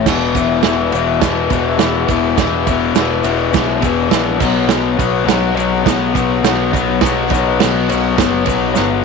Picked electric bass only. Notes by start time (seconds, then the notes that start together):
0.06 E1
0.35 E1
0.64 E1
0.93 E1
1.21 E1
1.50 E1
1.81 E1
2.08 E1
2.38 E1
2.67 E1
2.95 E1
3.23 E1
3.54 B1
3.83 E1
4.11 A#1
4.41 B1
4.67 B1
4.99 B1
5.25 B1
5.54 B1
5.86 B1
6.15 B1
6.43 B1
6.74 B1
7.01 B1
7.30 B1
7.63 B1
7.92 B1
8.19 F#1
8.47 B1
8.77 G1